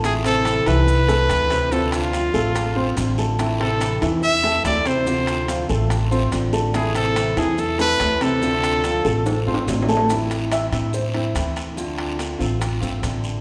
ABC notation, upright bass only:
X:1
M:4/4
L:1/8
Q:1/4=143
K:Am
V:1 name="Upright bass" clef=bass
A,,,3 C,,3 D,,2- | D,,3 A,,,3 A,,,2- | A,,,3 E,,3 D,,2- | D,,3 A,,,3 A,,,2- |
A,,,3 E,,3 D,,2- | D,,3 A,,,2 ^G,,, A,,,2- | A,,,3 A,,3 D,,2- | D,,3 A,,,2 ^G,,, A,,,2 |]